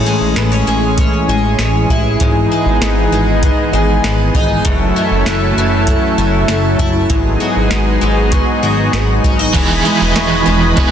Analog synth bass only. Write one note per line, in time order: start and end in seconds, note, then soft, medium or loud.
0.21 0.34 A1 medium
0.36 0.63 A1 medium
0.67 1.08 A1 medium
1.28 1.55 A1 medium
1.59 1.86 A1 medium
1.89 2.16 A1 medium
2.20 2.47 G#1 medium
2.66 2.79 G#1 medium
2.81 3.08 G#1 medium
3.12 3.52 G#1 medium
3.73 4.00 G#1 medium
4.03 4.31 G#1 medium
4.34 4.61 G#1 medium
4.65 4.92 F#1 loud
5.11 5.24 F#1 medium
5.26 5.53 F#1 medium
5.57 5.97 F#1 medium
6.18 6.45 F#1 medium
6.49 6.76 F#1 medium
6.79 7.06 F#1 medium
7.10 7.37 G#1 loud
7.56 7.70 G#1 medium
7.72 7.98 G#1 medium
8.02 8.42 G#1 medium
8.63 8.90 G#1 loud
8.93 9.20 G#1 loud
9.24 9.51 G#1 medium
9.55 9.82 E1 loud
10.01 10.14 E1 loud
10.16 10.43 E1 loud
10.46 10.73 E1 loud
10.77 10.91 E1 loud